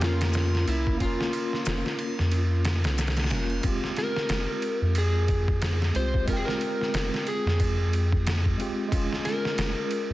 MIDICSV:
0, 0, Header, 1, 5, 480
1, 0, Start_track
1, 0, Key_signature, -4, "minor"
1, 0, Tempo, 659341
1, 729, Time_signature, 4, 2, 24, 8
1, 7375, End_track
2, 0, Start_track
2, 0, Title_t, "Electric slide guitar"
2, 0, Program_c, 0, 29
2, 29, Note_on_c, 0, 65, 96
2, 498, Note_off_c, 0, 65, 0
2, 501, Note_on_c, 0, 64, 94
2, 736, Note_off_c, 0, 64, 0
2, 739, Note_on_c, 0, 65, 92
2, 2145, Note_off_c, 0, 65, 0
2, 2901, Note_on_c, 0, 70, 89
2, 3626, Note_on_c, 0, 68, 89
2, 3637, Note_off_c, 0, 70, 0
2, 4339, Note_on_c, 0, 72, 109
2, 4359, Note_off_c, 0, 68, 0
2, 4558, Note_off_c, 0, 72, 0
2, 4583, Note_on_c, 0, 70, 107
2, 4632, Note_on_c, 0, 68, 88
2, 4638, Note_off_c, 0, 70, 0
2, 4691, Note_off_c, 0, 68, 0
2, 4698, Note_on_c, 0, 70, 105
2, 5302, Note_on_c, 0, 68, 88
2, 5312, Note_off_c, 0, 70, 0
2, 6227, Note_off_c, 0, 68, 0
2, 6734, Note_on_c, 0, 70, 89
2, 7375, Note_off_c, 0, 70, 0
2, 7375, End_track
3, 0, Start_track
3, 0, Title_t, "Tine electric piano"
3, 0, Program_c, 1, 4
3, 0, Control_c, 1, 64, 127
3, 0, Note_on_c, 1, 58, 91
3, 0, Note_on_c, 1, 61, 80
3, 0, Note_on_c, 1, 65, 84
3, 0, Note_on_c, 1, 70, 92
3, 7, Note_off_c, 1, 61, 0
3, 7, Note_on_c, 1, 61, 90
3, 27, Note_off_c, 1, 65, 0
3, 27, Note_on_c, 1, 65, 85
3, 49, Note_off_c, 1, 70, 0
3, 49, Note_on_c, 1, 70, 110
3, 696, Note_off_c, 1, 58, 0
3, 704, Note_off_c, 1, 61, 0
3, 708, Note_on_c, 1, 58, 85
3, 715, Note_off_c, 1, 65, 0
3, 726, Note_off_c, 1, 70, 0
3, 730, Note_on_c, 1, 61, 77
3, 749, Note_on_c, 1, 65, 84
3, 767, Note_on_c, 1, 70, 90
3, 1895, Note_off_c, 1, 58, 0
3, 1906, Note_off_c, 1, 61, 0
3, 1916, Note_off_c, 1, 65, 0
3, 1925, Note_off_c, 1, 70, 0
3, 2406, Note_on_c, 1, 58, 70
3, 2418, Note_on_c, 1, 61, 68
3, 2424, Note_on_c, 1, 65, 69
3, 2436, Note_on_c, 1, 70, 78
3, 2624, Note_off_c, 1, 58, 0
3, 2626, Note_on_c, 1, 56, 86
3, 2630, Note_off_c, 1, 61, 0
3, 2633, Note_off_c, 1, 65, 0
3, 2639, Note_off_c, 1, 70, 0
3, 2645, Note_on_c, 1, 60, 87
3, 2657, Control_c, 1, 64, 0
3, 2666, Note_on_c, 1, 65, 77
3, 2684, Note_on_c, 1, 67, 95
3, 2765, Control_c, 1, 64, 127
3, 3814, Note_off_c, 1, 56, 0
3, 3824, Note_off_c, 1, 60, 0
3, 3834, Note_off_c, 1, 65, 0
3, 3843, Note_off_c, 1, 67, 0
3, 4327, Note_on_c, 1, 56, 73
3, 4336, Note_on_c, 1, 60, 62
3, 4345, Note_on_c, 1, 65, 67
3, 4357, Note_on_c, 1, 67, 82
3, 4540, Note_off_c, 1, 56, 0
3, 4549, Note_off_c, 1, 60, 0
3, 4549, Note_on_c, 1, 56, 89
3, 4554, Note_off_c, 1, 65, 0
3, 4560, Note_off_c, 1, 67, 0
3, 4568, Note_on_c, 1, 60, 79
3, 4590, Note_on_c, 1, 65, 79
3, 4609, Note_on_c, 1, 79, 99
3, 5735, Note_off_c, 1, 56, 0
3, 5745, Note_off_c, 1, 60, 0
3, 5756, Note_off_c, 1, 65, 0
3, 5766, Note_off_c, 1, 79, 0
3, 6242, Note_on_c, 1, 56, 72
3, 6254, Note_on_c, 1, 60, 66
3, 6263, Note_on_c, 1, 65, 70
3, 6273, Note_on_c, 1, 67, 83
3, 6458, Note_off_c, 1, 56, 0
3, 6466, Note_on_c, 1, 56, 91
3, 6468, Note_off_c, 1, 60, 0
3, 6473, Note_off_c, 1, 65, 0
3, 6478, Note_off_c, 1, 67, 0
3, 6486, Note_on_c, 1, 61, 86
3, 6499, Control_c, 1, 64, 0
3, 6507, Note_on_c, 1, 65, 82
3, 6528, Note_on_c, 1, 68, 98
3, 6636, Control_c, 1, 64, 127
3, 7375, Note_off_c, 1, 56, 0
3, 7375, Note_off_c, 1, 61, 0
3, 7375, Note_off_c, 1, 65, 0
3, 7375, Note_off_c, 1, 68, 0
3, 7375, End_track
4, 0, Start_track
4, 0, Title_t, "Sub bass"
4, 0, Program_c, 2, 38
4, 0, Note_on_c, 2, 41, 101
4, 474, Note_off_c, 2, 41, 0
4, 488, Note_on_c, 2, 36, 81
4, 705, Note_off_c, 2, 36, 0
4, 731, Note_on_c, 2, 29, 99
4, 855, Note_off_c, 2, 29, 0
4, 1209, Note_on_c, 2, 29, 72
4, 1334, Note_off_c, 2, 29, 0
4, 1595, Note_on_c, 2, 41, 108
4, 2066, Note_on_c, 2, 36, 93
4, 2077, Note_off_c, 2, 41, 0
4, 2404, Note_on_c, 2, 29, 93
4, 2415, Note_off_c, 2, 36, 0
4, 2623, Note_off_c, 2, 29, 0
4, 2650, Note_on_c, 2, 29, 94
4, 2774, Note_off_c, 2, 29, 0
4, 3122, Note_on_c, 2, 29, 75
4, 3250, Note_off_c, 2, 29, 0
4, 3505, Note_on_c, 2, 41, 107
4, 4307, Note_off_c, 2, 41, 0
4, 4328, Note_on_c, 2, 36, 88
4, 4545, Note_off_c, 2, 36, 0
4, 4570, Note_on_c, 2, 29, 96
4, 4694, Note_off_c, 2, 29, 0
4, 5047, Note_on_c, 2, 29, 76
4, 5173, Note_off_c, 2, 29, 0
4, 5427, Note_on_c, 2, 41, 108
4, 6229, Note_off_c, 2, 41, 0
4, 6493, Note_on_c, 2, 29, 98
4, 6616, Note_off_c, 2, 29, 0
4, 6970, Note_on_c, 2, 29, 80
4, 7094, Note_off_c, 2, 29, 0
4, 7352, Note_on_c, 2, 41, 109
4, 7375, Note_off_c, 2, 41, 0
4, 7375, End_track
5, 0, Start_track
5, 0, Title_t, "Drums"
5, 10, Note_on_c, 9, 51, 79
5, 15, Note_on_c, 9, 38, 100
5, 83, Note_off_c, 9, 51, 0
5, 88, Note_off_c, 9, 38, 0
5, 152, Note_on_c, 9, 51, 80
5, 157, Note_on_c, 9, 38, 104
5, 225, Note_off_c, 9, 51, 0
5, 230, Note_off_c, 9, 38, 0
5, 241, Note_on_c, 9, 82, 65
5, 244, Note_on_c, 9, 81, 68
5, 251, Note_on_c, 9, 51, 74
5, 256, Note_on_c, 9, 38, 101
5, 314, Note_off_c, 9, 82, 0
5, 316, Note_off_c, 9, 81, 0
5, 323, Note_off_c, 9, 51, 0
5, 328, Note_off_c, 9, 38, 0
5, 399, Note_on_c, 9, 38, 49
5, 472, Note_off_c, 9, 38, 0
5, 492, Note_on_c, 9, 51, 64
5, 565, Note_off_c, 9, 51, 0
5, 632, Note_on_c, 9, 36, 89
5, 705, Note_off_c, 9, 36, 0
5, 730, Note_on_c, 9, 36, 105
5, 730, Note_on_c, 9, 51, 91
5, 803, Note_off_c, 9, 36, 0
5, 803, Note_off_c, 9, 51, 0
5, 878, Note_on_c, 9, 38, 57
5, 951, Note_off_c, 9, 38, 0
5, 969, Note_on_c, 9, 51, 65
5, 1042, Note_off_c, 9, 51, 0
5, 1115, Note_on_c, 9, 38, 36
5, 1187, Note_off_c, 9, 38, 0
5, 1204, Note_on_c, 9, 82, 74
5, 1209, Note_on_c, 9, 51, 85
5, 1214, Note_on_c, 9, 38, 116
5, 1277, Note_off_c, 9, 82, 0
5, 1282, Note_off_c, 9, 51, 0
5, 1287, Note_off_c, 9, 38, 0
5, 1353, Note_on_c, 9, 38, 49
5, 1426, Note_off_c, 9, 38, 0
5, 1446, Note_on_c, 9, 51, 62
5, 1448, Note_on_c, 9, 81, 58
5, 1519, Note_off_c, 9, 51, 0
5, 1521, Note_off_c, 9, 81, 0
5, 1594, Note_on_c, 9, 38, 46
5, 1667, Note_off_c, 9, 38, 0
5, 1685, Note_on_c, 9, 51, 73
5, 1758, Note_off_c, 9, 51, 0
5, 1926, Note_on_c, 9, 51, 75
5, 1931, Note_on_c, 9, 38, 104
5, 1999, Note_off_c, 9, 51, 0
5, 2004, Note_off_c, 9, 38, 0
5, 2069, Note_on_c, 9, 51, 71
5, 2074, Note_on_c, 9, 38, 98
5, 2142, Note_off_c, 9, 51, 0
5, 2147, Note_off_c, 9, 38, 0
5, 2169, Note_on_c, 9, 51, 69
5, 2171, Note_on_c, 9, 82, 69
5, 2174, Note_on_c, 9, 38, 84
5, 2238, Note_off_c, 9, 51, 0
5, 2238, Note_on_c, 9, 51, 63
5, 2243, Note_off_c, 9, 38, 0
5, 2243, Note_on_c, 9, 38, 87
5, 2244, Note_off_c, 9, 82, 0
5, 2305, Note_off_c, 9, 51, 0
5, 2305, Note_on_c, 9, 51, 67
5, 2309, Note_on_c, 9, 81, 80
5, 2310, Note_off_c, 9, 38, 0
5, 2310, Note_on_c, 9, 38, 83
5, 2355, Note_off_c, 9, 51, 0
5, 2355, Note_on_c, 9, 51, 64
5, 2361, Note_off_c, 9, 38, 0
5, 2361, Note_on_c, 9, 38, 78
5, 2382, Note_off_c, 9, 81, 0
5, 2405, Note_off_c, 9, 51, 0
5, 2405, Note_on_c, 9, 51, 72
5, 2410, Note_off_c, 9, 38, 0
5, 2410, Note_on_c, 9, 38, 98
5, 2477, Note_off_c, 9, 51, 0
5, 2482, Note_off_c, 9, 38, 0
5, 2548, Note_on_c, 9, 81, 58
5, 2620, Note_off_c, 9, 81, 0
5, 2644, Note_on_c, 9, 51, 85
5, 2649, Note_on_c, 9, 36, 107
5, 2717, Note_off_c, 9, 51, 0
5, 2721, Note_off_c, 9, 36, 0
5, 2793, Note_on_c, 9, 38, 43
5, 2866, Note_off_c, 9, 38, 0
5, 2886, Note_on_c, 9, 51, 65
5, 2891, Note_on_c, 9, 38, 36
5, 2959, Note_off_c, 9, 51, 0
5, 2964, Note_off_c, 9, 38, 0
5, 3032, Note_on_c, 9, 38, 51
5, 3105, Note_off_c, 9, 38, 0
5, 3124, Note_on_c, 9, 51, 87
5, 3129, Note_on_c, 9, 38, 117
5, 3197, Note_off_c, 9, 51, 0
5, 3202, Note_off_c, 9, 38, 0
5, 3365, Note_on_c, 9, 51, 66
5, 3437, Note_off_c, 9, 51, 0
5, 3604, Note_on_c, 9, 51, 79
5, 3677, Note_off_c, 9, 51, 0
5, 3846, Note_on_c, 9, 51, 69
5, 3848, Note_on_c, 9, 36, 87
5, 3919, Note_off_c, 9, 51, 0
5, 3921, Note_off_c, 9, 36, 0
5, 3990, Note_on_c, 9, 36, 93
5, 4063, Note_off_c, 9, 36, 0
5, 4089, Note_on_c, 9, 51, 84
5, 4094, Note_on_c, 9, 38, 118
5, 4162, Note_off_c, 9, 51, 0
5, 4167, Note_off_c, 9, 38, 0
5, 4237, Note_on_c, 9, 38, 50
5, 4310, Note_off_c, 9, 38, 0
5, 4331, Note_on_c, 9, 51, 67
5, 4404, Note_off_c, 9, 51, 0
5, 4471, Note_on_c, 9, 36, 93
5, 4544, Note_off_c, 9, 36, 0
5, 4569, Note_on_c, 9, 36, 110
5, 4569, Note_on_c, 9, 51, 87
5, 4642, Note_off_c, 9, 36, 0
5, 4642, Note_off_c, 9, 51, 0
5, 4717, Note_on_c, 9, 38, 55
5, 4790, Note_off_c, 9, 38, 0
5, 4812, Note_on_c, 9, 51, 66
5, 4884, Note_off_c, 9, 51, 0
5, 4961, Note_on_c, 9, 38, 36
5, 5033, Note_off_c, 9, 38, 0
5, 5052, Note_on_c, 9, 51, 86
5, 5057, Note_on_c, 9, 38, 112
5, 5125, Note_off_c, 9, 51, 0
5, 5130, Note_off_c, 9, 38, 0
5, 5199, Note_on_c, 9, 38, 48
5, 5271, Note_off_c, 9, 38, 0
5, 5290, Note_on_c, 9, 51, 61
5, 5363, Note_off_c, 9, 51, 0
5, 5440, Note_on_c, 9, 38, 51
5, 5513, Note_off_c, 9, 38, 0
5, 5531, Note_on_c, 9, 36, 105
5, 5531, Note_on_c, 9, 51, 83
5, 5604, Note_off_c, 9, 36, 0
5, 5604, Note_off_c, 9, 51, 0
5, 5775, Note_on_c, 9, 51, 70
5, 5848, Note_off_c, 9, 51, 0
5, 5915, Note_on_c, 9, 36, 91
5, 5987, Note_off_c, 9, 36, 0
5, 6018, Note_on_c, 9, 51, 84
5, 6023, Note_on_c, 9, 38, 122
5, 6091, Note_off_c, 9, 51, 0
5, 6096, Note_off_c, 9, 38, 0
5, 6156, Note_on_c, 9, 36, 92
5, 6228, Note_off_c, 9, 36, 0
5, 6259, Note_on_c, 9, 51, 69
5, 6332, Note_off_c, 9, 51, 0
5, 6494, Note_on_c, 9, 36, 110
5, 6496, Note_on_c, 9, 51, 89
5, 6566, Note_off_c, 9, 36, 0
5, 6569, Note_off_c, 9, 51, 0
5, 6643, Note_on_c, 9, 38, 43
5, 6716, Note_off_c, 9, 38, 0
5, 6734, Note_on_c, 9, 51, 68
5, 6739, Note_on_c, 9, 38, 38
5, 6807, Note_off_c, 9, 51, 0
5, 6812, Note_off_c, 9, 38, 0
5, 6881, Note_on_c, 9, 38, 52
5, 6954, Note_off_c, 9, 38, 0
5, 6974, Note_on_c, 9, 51, 84
5, 6979, Note_on_c, 9, 38, 116
5, 7047, Note_off_c, 9, 51, 0
5, 7052, Note_off_c, 9, 38, 0
5, 7212, Note_on_c, 9, 51, 68
5, 7285, Note_off_c, 9, 51, 0
5, 7375, End_track
0, 0, End_of_file